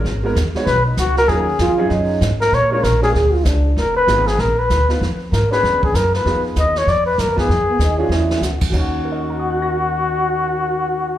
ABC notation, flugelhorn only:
X:1
M:4/4
L:1/8
Q:"Swing" 1/4=193
K:Ebm
V:1 name="Flugelhorn"
z4 c E G B | A3 z4 B | ^c c B A z4 | B c2 A B c2 z |
z2 B c2 ^G B =B- | =B z e d =d c _B A- | A4 z4 | G8- |
G8 |]